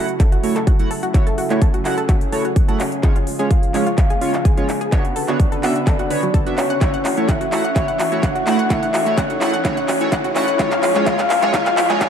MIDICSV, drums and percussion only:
0, 0, Header, 1, 2, 480
1, 0, Start_track
1, 0, Key_signature, 3, "minor"
1, 0, Tempo, 472441
1, 1162, Time_signature, 4, 2, 24, 8
1, 12283, End_track
2, 0, Start_track
2, 0, Title_t, "Drums"
2, 88, Note_on_c, 9, 42, 39
2, 189, Note_off_c, 9, 42, 0
2, 202, Note_on_c, 9, 36, 113
2, 202, Note_on_c, 9, 39, 48
2, 202, Note_on_c, 9, 42, 90
2, 303, Note_off_c, 9, 36, 0
2, 303, Note_off_c, 9, 39, 0
2, 303, Note_off_c, 9, 42, 0
2, 328, Note_on_c, 9, 42, 38
2, 429, Note_off_c, 9, 42, 0
2, 442, Note_on_c, 9, 46, 102
2, 544, Note_off_c, 9, 46, 0
2, 568, Note_on_c, 9, 39, 43
2, 568, Note_on_c, 9, 42, 39
2, 670, Note_off_c, 9, 39, 0
2, 670, Note_off_c, 9, 42, 0
2, 682, Note_on_c, 9, 36, 109
2, 682, Note_on_c, 9, 42, 84
2, 783, Note_off_c, 9, 36, 0
2, 783, Note_off_c, 9, 42, 0
2, 808, Note_on_c, 9, 42, 39
2, 909, Note_off_c, 9, 42, 0
2, 922, Note_on_c, 9, 46, 87
2, 1023, Note_off_c, 9, 46, 0
2, 1048, Note_on_c, 9, 42, 40
2, 1149, Note_off_c, 9, 42, 0
2, 1162, Note_on_c, 9, 36, 119
2, 1162, Note_on_c, 9, 39, 49
2, 1162, Note_on_c, 9, 42, 84
2, 1263, Note_off_c, 9, 36, 0
2, 1264, Note_off_c, 9, 39, 0
2, 1264, Note_off_c, 9, 42, 0
2, 1287, Note_on_c, 9, 42, 37
2, 1389, Note_off_c, 9, 42, 0
2, 1401, Note_on_c, 9, 46, 102
2, 1503, Note_off_c, 9, 46, 0
2, 1527, Note_on_c, 9, 39, 43
2, 1527, Note_on_c, 9, 42, 35
2, 1629, Note_off_c, 9, 39, 0
2, 1629, Note_off_c, 9, 42, 0
2, 1641, Note_on_c, 9, 42, 88
2, 1642, Note_on_c, 9, 36, 114
2, 1743, Note_off_c, 9, 36, 0
2, 1743, Note_off_c, 9, 42, 0
2, 1767, Note_on_c, 9, 42, 38
2, 1869, Note_off_c, 9, 42, 0
2, 1882, Note_on_c, 9, 39, 54
2, 1882, Note_on_c, 9, 46, 91
2, 1983, Note_off_c, 9, 39, 0
2, 1983, Note_off_c, 9, 46, 0
2, 2007, Note_on_c, 9, 42, 39
2, 2109, Note_off_c, 9, 42, 0
2, 2121, Note_on_c, 9, 39, 52
2, 2121, Note_on_c, 9, 42, 92
2, 2122, Note_on_c, 9, 36, 117
2, 2223, Note_off_c, 9, 36, 0
2, 2223, Note_off_c, 9, 39, 0
2, 2223, Note_off_c, 9, 42, 0
2, 2247, Note_on_c, 9, 42, 38
2, 2349, Note_off_c, 9, 42, 0
2, 2362, Note_on_c, 9, 46, 103
2, 2463, Note_off_c, 9, 46, 0
2, 2488, Note_on_c, 9, 42, 38
2, 2589, Note_off_c, 9, 42, 0
2, 2602, Note_on_c, 9, 36, 114
2, 2602, Note_on_c, 9, 42, 87
2, 2703, Note_off_c, 9, 36, 0
2, 2703, Note_off_c, 9, 42, 0
2, 2728, Note_on_c, 9, 42, 37
2, 2829, Note_off_c, 9, 42, 0
2, 2842, Note_on_c, 9, 39, 56
2, 2842, Note_on_c, 9, 46, 93
2, 2944, Note_off_c, 9, 39, 0
2, 2944, Note_off_c, 9, 46, 0
2, 2968, Note_on_c, 9, 42, 38
2, 3069, Note_off_c, 9, 42, 0
2, 3082, Note_on_c, 9, 36, 115
2, 3082, Note_on_c, 9, 39, 56
2, 3082, Note_on_c, 9, 42, 81
2, 3184, Note_off_c, 9, 36, 0
2, 3184, Note_off_c, 9, 39, 0
2, 3184, Note_off_c, 9, 42, 0
2, 3208, Note_on_c, 9, 42, 36
2, 3309, Note_off_c, 9, 42, 0
2, 3322, Note_on_c, 9, 46, 108
2, 3424, Note_off_c, 9, 46, 0
2, 3447, Note_on_c, 9, 42, 36
2, 3549, Note_off_c, 9, 42, 0
2, 3561, Note_on_c, 9, 42, 85
2, 3562, Note_on_c, 9, 36, 117
2, 3663, Note_off_c, 9, 36, 0
2, 3663, Note_off_c, 9, 42, 0
2, 3687, Note_on_c, 9, 42, 36
2, 3789, Note_off_c, 9, 42, 0
2, 3802, Note_on_c, 9, 39, 61
2, 3802, Note_on_c, 9, 46, 97
2, 3903, Note_off_c, 9, 39, 0
2, 3903, Note_off_c, 9, 46, 0
2, 3927, Note_on_c, 9, 42, 37
2, 4029, Note_off_c, 9, 42, 0
2, 4042, Note_on_c, 9, 36, 120
2, 4042, Note_on_c, 9, 39, 62
2, 4042, Note_on_c, 9, 42, 91
2, 4143, Note_off_c, 9, 39, 0
2, 4143, Note_off_c, 9, 42, 0
2, 4144, Note_off_c, 9, 36, 0
2, 4167, Note_on_c, 9, 42, 36
2, 4269, Note_off_c, 9, 42, 0
2, 4282, Note_on_c, 9, 46, 107
2, 4383, Note_off_c, 9, 46, 0
2, 4407, Note_on_c, 9, 39, 55
2, 4407, Note_on_c, 9, 42, 36
2, 4509, Note_off_c, 9, 39, 0
2, 4509, Note_off_c, 9, 42, 0
2, 4522, Note_on_c, 9, 36, 119
2, 4522, Note_on_c, 9, 42, 82
2, 4624, Note_off_c, 9, 36, 0
2, 4624, Note_off_c, 9, 42, 0
2, 4648, Note_on_c, 9, 42, 37
2, 4749, Note_off_c, 9, 42, 0
2, 4762, Note_on_c, 9, 39, 63
2, 4762, Note_on_c, 9, 46, 92
2, 4864, Note_off_c, 9, 39, 0
2, 4864, Note_off_c, 9, 46, 0
2, 4888, Note_on_c, 9, 42, 36
2, 4989, Note_off_c, 9, 42, 0
2, 5002, Note_on_c, 9, 36, 117
2, 5002, Note_on_c, 9, 39, 63
2, 5002, Note_on_c, 9, 42, 82
2, 5103, Note_off_c, 9, 39, 0
2, 5103, Note_off_c, 9, 42, 0
2, 5104, Note_off_c, 9, 36, 0
2, 5128, Note_on_c, 9, 42, 36
2, 5229, Note_off_c, 9, 42, 0
2, 5242, Note_on_c, 9, 46, 109
2, 5343, Note_off_c, 9, 46, 0
2, 5368, Note_on_c, 9, 39, 55
2, 5368, Note_on_c, 9, 42, 35
2, 5470, Note_off_c, 9, 39, 0
2, 5470, Note_off_c, 9, 42, 0
2, 5482, Note_on_c, 9, 36, 120
2, 5482, Note_on_c, 9, 42, 86
2, 5584, Note_off_c, 9, 36, 0
2, 5584, Note_off_c, 9, 42, 0
2, 5608, Note_on_c, 9, 42, 37
2, 5710, Note_off_c, 9, 42, 0
2, 5723, Note_on_c, 9, 39, 69
2, 5723, Note_on_c, 9, 46, 98
2, 5824, Note_off_c, 9, 39, 0
2, 5824, Note_off_c, 9, 46, 0
2, 5848, Note_on_c, 9, 42, 37
2, 5950, Note_off_c, 9, 42, 0
2, 5962, Note_on_c, 9, 36, 125
2, 5962, Note_on_c, 9, 39, 69
2, 5962, Note_on_c, 9, 42, 86
2, 6064, Note_off_c, 9, 36, 0
2, 6064, Note_off_c, 9, 39, 0
2, 6064, Note_off_c, 9, 42, 0
2, 6088, Note_on_c, 9, 42, 36
2, 6190, Note_off_c, 9, 42, 0
2, 6202, Note_on_c, 9, 46, 107
2, 6304, Note_off_c, 9, 46, 0
2, 6328, Note_on_c, 9, 42, 37
2, 6430, Note_off_c, 9, 42, 0
2, 6442, Note_on_c, 9, 36, 117
2, 6442, Note_on_c, 9, 42, 82
2, 6544, Note_off_c, 9, 36, 0
2, 6544, Note_off_c, 9, 42, 0
2, 6568, Note_on_c, 9, 42, 36
2, 6670, Note_off_c, 9, 42, 0
2, 6682, Note_on_c, 9, 39, 70
2, 6682, Note_on_c, 9, 46, 92
2, 6784, Note_off_c, 9, 39, 0
2, 6784, Note_off_c, 9, 46, 0
2, 6808, Note_on_c, 9, 42, 37
2, 6910, Note_off_c, 9, 42, 0
2, 6922, Note_on_c, 9, 36, 117
2, 6922, Note_on_c, 9, 39, 68
2, 6922, Note_on_c, 9, 42, 80
2, 7024, Note_off_c, 9, 36, 0
2, 7024, Note_off_c, 9, 39, 0
2, 7024, Note_off_c, 9, 42, 0
2, 7048, Note_on_c, 9, 42, 37
2, 7149, Note_off_c, 9, 42, 0
2, 7162, Note_on_c, 9, 39, 76
2, 7162, Note_on_c, 9, 46, 105
2, 7264, Note_off_c, 9, 39, 0
2, 7264, Note_off_c, 9, 46, 0
2, 7288, Note_on_c, 9, 42, 35
2, 7390, Note_off_c, 9, 42, 0
2, 7402, Note_on_c, 9, 36, 113
2, 7402, Note_on_c, 9, 39, 72
2, 7402, Note_on_c, 9, 42, 85
2, 7504, Note_off_c, 9, 36, 0
2, 7504, Note_off_c, 9, 39, 0
2, 7504, Note_off_c, 9, 42, 0
2, 7528, Note_on_c, 9, 42, 38
2, 7630, Note_off_c, 9, 42, 0
2, 7643, Note_on_c, 9, 39, 78
2, 7643, Note_on_c, 9, 46, 93
2, 7744, Note_off_c, 9, 39, 0
2, 7744, Note_off_c, 9, 46, 0
2, 7768, Note_on_c, 9, 42, 37
2, 7870, Note_off_c, 9, 42, 0
2, 7882, Note_on_c, 9, 36, 122
2, 7882, Note_on_c, 9, 39, 77
2, 7882, Note_on_c, 9, 42, 86
2, 7984, Note_off_c, 9, 36, 0
2, 7984, Note_off_c, 9, 39, 0
2, 7984, Note_off_c, 9, 42, 0
2, 8008, Note_on_c, 9, 42, 37
2, 8110, Note_off_c, 9, 42, 0
2, 8123, Note_on_c, 9, 39, 81
2, 8123, Note_on_c, 9, 46, 102
2, 8224, Note_off_c, 9, 39, 0
2, 8224, Note_off_c, 9, 46, 0
2, 8248, Note_on_c, 9, 42, 36
2, 8350, Note_off_c, 9, 42, 0
2, 8362, Note_on_c, 9, 36, 119
2, 8362, Note_on_c, 9, 39, 74
2, 8362, Note_on_c, 9, 42, 83
2, 8464, Note_off_c, 9, 36, 0
2, 8464, Note_off_c, 9, 39, 0
2, 8464, Note_off_c, 9, 42, 0
2, 8488, Note_on_c, 9, 42, 37
2, 8590, Note_off_c, 9, 42, 0
2, 8603, Note_on_c, 9, 39, 81
2, 8603, Note_on_c, 9, 46, 90
2, 8704, Note_off_c, 9, 39, 0
2, 8704, Note_off_c, 9, 46, 0
2, 8728, Note_on_c, 9, 42, 37
2, 8830, Note_off_c, 9, 42, 0
2, 8842, Note_on_c, 9, 36, 117
2, 8843, Note_on_c, 9, 39, 78
2, 8843, Note_on_c, 9, 42, 89
2, 8944, Note_off_c, 9, 36, 0
2, 8944, Note_off_c, 9, 39, 0
2, 8944, Note_off_c, 9, 42, 0
2, 8969, Note_on_c, 9, 42, 38
2, 9070, Note_off_c, 9, 42, 0
2, 9082, Note_on_c, 9, 39, 86
2, 9082, Note_on_c, 9, 46, 102
2, 9184, Note_off_c, 9, 39, 0
2, 9184, Note_off_c, 9, 46, 0
2, 9208, Note_on_c, 9, 42, 39
2, 9310, Note_off_c, 9, 42, 0
2, 9322, Note_on_c, 9, 36, 115
2, 9322, Note_on_c, 9, 39, 81
2, 9322, Note_on_c, 9, 42, 93
2, 9424, Note_off_c, 9, 36, 0
2, 9424, Note_off_c, 9, 39, 0
2, 9424, Note_off_c, 9, 42, 0
2, 9448, Note_on_c, 9, 42, 39
2, 9550, Note_off_c, 9, 42, 0
2, 9562, Note_on_c, 9, 39, 87
2, 9562, Note_on_c, 9, 46, 90
2, 9664, Note_off_c, 9, 39, 0
2, 9664, Note_off_c, 9, 46, 0
2, 9688, Note_on_c, 9, 42, 40
2, 9790, Note_off_c, 9, 42, 0
2, 9802, Note_on_c, 9, 36, 118
2, 9802, Note_on_c, 9, 39, 85
2, 9802, Note_on_c, 9, 42, 93
2, 9903, Note_off_c, 9, 36, 0
2, 9904, Note_off_c, 9, 39, 0
2, 9904, Note_off_c, 9, 42, 0
2, 9928, Note_on_c, 9, 42, 37
2, 10030, Note_off_c, 9, 42, 0
2, 10042, Note_on_c, 9, 39, 86
2, 10042, Note_on_c, 9, 46, 105
2, 10144, Note_off_c, 9, 39, 0
2, 10144, Note_off_c, 9, 46, 0
2, 10168, Note_on_c, 9, 42, 39
2, 10269, Note_off_c, 9, 42, 0
2, 10282, Note_on_c, 9, 36, 113
2, 10282, Note_on_c, 9, 39, 85
2, 10282, Note_on_c, 9, 42, 89
2, 10384, Note_off_c, 9, 36, 0
2, 10384, Note_off_c, 9, 39, 0
2, 10384, Note_off_c, 9, 42, 0
2, 10408, Note_on_c, 9, 42, 38
2, 10509, Note_off_c, 9, 42, 0
2, 10522, Note_on_c, 9, 39, 89
2, 10522, Note_on_c, 9, 46, 91
2, 10623, Note_off_c, 9, 39, 0
2, 10623, Note_off_c, 9, 46, 0
2, 10647, Note_on_c, 9, 42, 39
2, 10749, Note_off_c, 9, 42, 0
2, 10762, Note_on_c, 9, 36, 114
2, 10762, Note_on_c, 9, 39, 89
2, 10762, Note_on_c, 9, 42, 93
2, 10863, Note_off_c, 9, 36, 0
2, 10863, Note_off_c, 9, 39, 0
2, 10863, Note_off_c, 9, 42, 0
2, 10887, Note_on_c, 9, 39, 78
2, 10887, Note_on_c, 9, 42, 39
2, 10989, Note_off_c, 9, 39, 0
2, 10989, Note_off_c, 9, 42, 0
2, 11002, Note_on_c, 9, 39, 95
2, 11002, Note_on_c, 9, 46, 102
2, 11103, Note_off_c, 9, 39, 0
2, 11103, Note_off_c, 9, 46, 0
2, 11128, Note_on_c, 9, 39, 78
2, 11128, Note_on_c, 9, 42, 38
2, 11229, Note_off_c, 9, 39, 0
2, 11229, Note_off_c, 9, 42, 0
2, 11241, Note_on_c, 9, 39, 93
2, 11241, Note_on_c, 9, 42, 95
2, 11242, Note_on_c, 9, 36, 113
2, 11343, Note_off_c, 9, 36, 0
2, 11343, Note_off_c, 9, 39, 0
2, 11343, Note_off_c, 9, 42, 0
2, 11367, Note_on_c, 9, 39, 84
2, 11367, Note_on_c, 9, 42, 42
2, 11469, Note_off_c, 9, 39, 0
2, 11469, Note_off_c, 9, 42, 0
2, 11482, Note_on_c, 9, 39, 96
2, 11482, Note_on_c, 9, 46, 92
2, 11583, Note_off_c, 9, 39, 0
2, 11583, Note_off_c, 9, 46, 0
2, 11607, Note_on_c, 9, 39, 86
2, 11607, Note_on_c, 9, 42, 41
2, 11709, Note_off_c, 9, 39, 0
2, 11709, Note_off_c, 9, 42, 0
2, 11721, Note_on_c, 9, 39, 98
2, 11721, Note_on_c, 9, 42, 100
2, 11722, Note_on_c, 9, 36, 117
2, 11823, Note_off_c, 9, 36, 0
2, 11823, Note_off_c, 9, 39, 0
2, 11823, Note_off_c, 9, 42, 0
2, 11847, Note_on_c, 9, 39, 85
2, 11847, Note_on_c, 9, 42, 40
2, 11948, Note_off_c, 9, 39, 0
2, 11948, Note_off_c, 9, 42, 0
2, 11961, Note_on_c, 9, 39, 100
2, 11961, Note_on_c, 9, 46, 102
2, 12063, Note_off_c, 9, 39, 0
2, 12063, Note_off_c, 9, 46, 0
2, 12087, Note_on_c, 9, 39, 86
2, 12087, Note_on_c, 9, 42, 40
2, 12189, Note_off_c, 9, 39, 0
2, 12189, Note_off_c, 9, 42, 0
2, 12201, Note_on_c, 9, 39, 98
2, 12201, Note_on_c, 9, 42, 95
2, 12202, Note_on_c, 9, 36, 111
2, 12283, Note_off_c, 9, 36, 0
2, 12283, Note_off_c, 9, 39, 0
2, 12283, Note_off_c, 9, 42, 0
2, 12283, End_track
0, 0, End_of_file